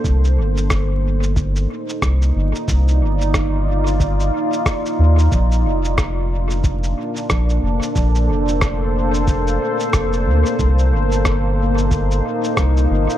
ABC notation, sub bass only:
X:1
M:4/4
L:1/8
Q:"Swing 16ths" 1/4=91
K:Cdor
V:1 name="Sub bass" clef=bass
C,, G,,,4 z C,, G,,, | C,, G,,,4 z2 E,, | B,,, F,,,4 z B,,, F,,, | B,,, F,,,4 z F,,, D,, |
C,, G,,,4 z C,, G,,, |]